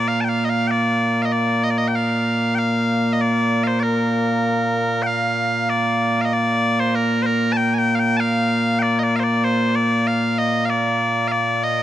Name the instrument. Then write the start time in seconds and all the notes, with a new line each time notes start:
bagpipes
Already playing: A#2 A#3
0.08 F5
0.21 G5 A5
0.29 F5
0.45 D#5
0.50 F5
0.67 D5 G5
1.22 D#5 F5
1.32 D5
1.63 D#5
1.70 D5
1.78 D#5
1.88 G5
1.95 F5
2.55 F5 G5
3.13 D#5
3.21 D5
3.64 C5 F5
3.80 A#4 D5
5.03 F5 G5
5.70 D5
6.21 D#5 F5
6.33 D5
6.80 C5
6.95 A#4
7.22 A#4 C5
7.53 A5
7.57 G5
7.74 G#5
7.78 G5
7.95 F5
7.99 G5
8.17 F5 A5
8.79 D5 G5
8.99 D#5
9.03 D5
9.16 C5 F5
9.24 D5
9.44 C5
9.75 D5
10.07 F5
10.38 D#5
10.66 F5
10.70 D5
11.28 D5 F5
11.63 D#5